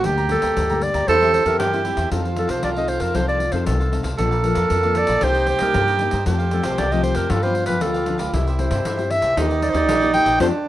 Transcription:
0.04 D2 G2 D3 G3 A#3 D4 G4 A4 D5 G5 A#5, pandeiro
0.18 D5 G5 A#5, pandeiro
0.29 D3 G3 A#3 D4 G4 A4, pandeiro
0.42 D2 D5 G5 A#5, pandeiro
0.57 D2 G2 A4 D5 G5 A#5, pandeiro
0.70 D3 G3 A#3 D4 G4 D5 G5 A#5, pandeiro
0.81 D5, pandeiro
0.94 D2 D5 G5 A#5, pandeiro
1.08 E2 E3 C4 E4 G4 A4 C5 E5, pandeiro
1.21 C4 E4 G4 C5 E5, pandeiro
1.34 C5, pandeiro
1.45 E2 C4 E4 G4 A#4 C5 E5, pandeiro
1.59 G2 E3 G4, pandeiro
1.73 C4 E4 G4 C5 E5, pandeiro
1.84 C4 E4 G4 C5 E5, pandeiro
1.97 E2 G4 C5 E5, pandeiro
2.11 F2 F3 C4 D#4 F4 A4 C5 F5, pandeiro
2.25 A4 C5 F5, pandeiro
2.36 C4 D#4 A4, pandeiro
2.48 C2 A4 C5 F5, pandeiro
2.62 C2 C3 D#4 A4 C5 D5 F5, pandeiro
2.75 C4 D#4 A4 C5 D#5 F5, pandeiro
2.88 C5, muted cavaquinho stroke, pandeiro
2.99 F2 A4 A#4 C5 F5, pandeiro
3.14 C2 F3 C4 D#4 A4 C5 F5, pandeiro
3.28 A4 C5 D5 F5, pandeiro
3.40 pandeiro
3.52 F2 C4 D#4 A4 C5 F5, pandeiro
3.66 C2 C3 A4, pandeiro
3.80 A4 C5 F5, pandeiro
3.91 C4 D#4 A4 C5 F5, pandeiro
4.03 C2 A4 C5 F5, pandeiro
4.17 A#1 A#2 F3 A#3 D4 A4 A#4 D5 F5, pandeiro
4.31 A#4 D5 F5, pandeiro
4.44 F3 A#3 D4 A#4, pandeiro
4.55 F2 A#4 D5 F5, pandeiro
4.69 F2 F3 D4 A#4 D5 F5, pandeiro
4.83 F3 A#3 D4 A#4 D5 F5, pandeiro
4.95 D5, muted cavaquinho stroke, pandeiro
5.06 A#1 A#4 D5 F5, pandeiro
5.21 C2 C3 G3 A#3 D#4 G4 A#4 C5 D#5, pandeiro
5.34 A#4 C5 D#5, pandeiro
5.46 C5, muted cavaquinho stroke, pandeiro
5.58 C2 G3 A#3 D#4 A#4 C5 D#5, pandeiro
5.74 G2, pandeiro
5.87 A#4 C5 D#5, pandeiro
5.99 G3 A#3 D#4 A#4 C5 D#5, pandeiro
6.11 G2 A#4 C5 D#5, pandeiro
6.25 F2 F3 A3 C4 F4 G4 A4 C5 F5, pandeiro
6.38 A4 C5 F5, pandeiro
6.51 F3 A3 C4 A4, pandeiro
6.63 C2 A4 C5 F5, pandeiro
6.78 C2 C3 F4 A4 C5 D5 F5, pandeiro
6.91 F3 A3 C4 A4 C5 D#5 F5, pandeiro
7.02 C5, muted cavaquinho stroke, pandeiro
7.14 F2 A4 A#4 C5 F5, pandeiro
7.29 G2 F3 B3 D4 F4 G4 A4 B4 F5, pandeiro
7.43 F3 B3 D4 G4 B4 C5 F5, pandeiro
7.55 muted cavaquinho stroke, pandeiro
7.66 G2 F3 B3 D4 G4 B4 F5, pandeiro
7.81 D2 D3 A4, pandeiro
7.94 G4 B4 F5, pandeiro
8.06 F3 B3 D4 G4 B4 F5, pandeiro
8.18 C#2 G4 B4 F5, pandeiro
8.33 C2 C3 C4 E4 G4 C5 E5, pandeiro
8.47 G4 C5 E5, pandeiro
8.59 C4 E4 G4 C5, pandeiro
8.71 G2 G4 C5 E5, pandeiro
8.85 G2 E4 G4 C5 E5, pandeiro
8.97 C4 E4 G4 C5 E5, pandeiro
9.10 E5, muted cavaquinho stroke, pandeiro
9.21 C2 G4 C5 E5, pandeiro
9.36 D#2 D#3 A#3 D4 D#4 G4 D5 D#5, pandeiro
9.50 G4 D5 D#5, pandeiro
9.62 D5, muted cavaquinho stroke, pandeiro
9.70 C5 D5 D#5
9.74 D#2 A#3 D4 G4 D5, pandeiro
9.88 A#1 A#2, pandeiro
10.00 A#3 D4 G4 D5 D#5, pandeiro
10.13 A#3 D4 G4 D5 D#5 G5, pandeiro
10.25 A#1 G4 D5 D#5, pandeiro
10.39 F2 A3 C4 D4 F4 A4 C5 F5, pandeiro

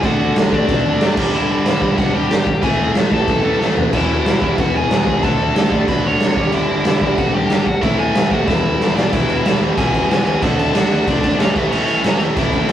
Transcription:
0.02 D2 D3 A3 D4 F#4, kick, crash
0.06 F#5
0.19 D2
0.36 D2, snare, crash
0.51 D2 D3 A3 D4 D5, kick
0.69 B2, kick, crash
0.86 D2
1.00 F#1 D3 A3 D4, snare, crash
1.16 G1 G2 D3 G3, kick, crash
1.34 G1 E4 E5, crash
1.50 G1
1.64 G1 G2 D3 G3, snare, crash
1.81 G2, kick
1.98 G1 F#4 F#5, kick, crash
2.13 G1 G2 D3 G3 G4 G5
2.30 G1, snare, crash
2.47 G1, kick
2.62 A1 A2 E3 A3 G#4 G#5, kick, crash
2.80 A1
2.95 A1, snare, crash
3.11 A1 A2 E3 A3 A4 A5, kick
3.28 F#2, kick, crash
3.43 A1
3.60 A1 A2 E3 A3, snare
3.77 F#1, floor tom
3.91 E1 E2 B2 E3 E4 E5, kick, crash
4.10 E1
4.26 E1, snare, crash
4.40 E2 B2 E3, kick
4.58 E1 F#4 F#5, kick, crash
4.75 E1 G#4 G#5
4.89 E1 E2 B2 E3, snare, crash
5.07 C#2, kick
5.22 D2 D3 A3 D4 A4 A5, kick, crash
5.40 D2
5.56 D2, snare, crash
5.70 D2 D3 A3 D4, kick
5.88 B2 B4 B5, kick, crash
6.04 D2 C#5 C#6
6.19 G#1 D3 A3 D4, snare, crash
6.35 G1 G2 D3 G3, kick
6.52 G1 E4 E5, crash
6.70 G1
6.84 G1 G2 D3 G3, snare, crash
7.02 G2, kick
7.18 G1 F#4 F#5, kick, crash
7.33 G1 G2 D3 G3 G4 G5
7.50 G1, snare, crash
7.67 G1 F#4 F#5, kick
7.81 A1 A2 E3 A3 E4 E5, kick, crash
7.99 A1 G#4 G#5
8.15 A1, snare, crash
8.30 D#2 A2 E3 A3 F#4 F#5, kick
8.46 E1 E2 B2 E3 E4 E5, kick, snare
8.64 E1
8.80 E1, snare
8.94 B1 E2 B2 E3 D4 D5, snare
9.11 E1 E2 B2 E3 E4 E5, kick, crash
9.29 E1, crash
9.44 E1 E2 B2 E3, snare, crash
9.61 E1 E2 B2 E3, crash
9.76 E1 E2 B2 E3 G#4 G#5, kick, crash
9.94 E1, kick, crash
10.09 E1 E2 B2 E3 G#4 G#5, snare, crash
10.25 C#2 E2 B2 E3 G#4 G#5, crash
10.41 D2 D3 A3 D4 F#4 F#5, kick, crash
10.59 D2 A4 A5, crash
10.73 D2 D3 A3 D4 F#4 F#5, snare, crash
10.90 D2 D3 A3 D4, crash
11.06 D2 D3 A3 D4 D5, kick, crash
11.23 D2, kick, crash
11.38 D2 D3 A3 C#4 D4 C#5, snare, crash
11.55 A1 A2 E3 A3 B3 B4, kick, crash
11.71 A1 A2 E3 A3 C#4 C#5, crash
11.88 A1, crash
12.03 A1 A2 E3 A3, snare, crash
12.19 A1 A2 E3 A3, crash
12.36 A1 A2 E3 A3 E4 E5, kick, crash
12.53 A1, kick, crash
12.68 A2 E3 A3, crash

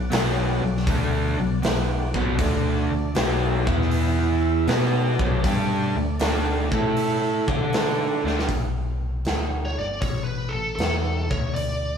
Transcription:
Already playing: B1 B3 F#4 D5
0.11 B1 B2 F#3 B3, snare, open hi-hat
0.62 B1 B2 F#3
0.77 snare
0.87 D2 D3 A3 D4, kick, open hi-hat
1.39 B1 B2 F#3
1.62 B1 B2 F#3 B3 F#4 D5, snare, open hi-hat
2.14 B1 B2 F#3 B3, kick
2.38 D2 D3 A3 D4 D5, kick, open hi-hat
2.91 D2 D3 A3
3.15 B1 B2 F#3 B3, snare, open hi-hat
3.66 E2 E3 B3 E4 E5, kick
3.82 snare
3.91 open hi-hat
4.67 B2 A3 B3 D4 F#4 B4 D5, snare, open hi-hat
5.19 B1 B2 F#3 B3, kick
5.44 G2 G3 D4 G4, kick, open hi-hat
5.96 D2 D3 A3
6.19 D2 D3 A3 D4, snare, open hi-hat
6.71 A2 A3 E4 A4 E5, kick
6.97 open hi-hat
7.47 D3 A3 D4 A4 D5, kick
7.73 snare, open hi-hat
8.24 D2 D3 A3 D4, snare
8.39 snare
8.49 B1, kick, open hi-hat
9.25 D2, snare, open hi-hat
9.65 C#5
9.78 G1 D5
10.01 A1 C#5, kick, open hi-hat
10.24 B4
10.49 A4
10.54 A1
10.76 E2 A4, open hi-hat
10.80 snare
11.30 D2 C#5, kick
11.54 D2 D5, open hi-hat

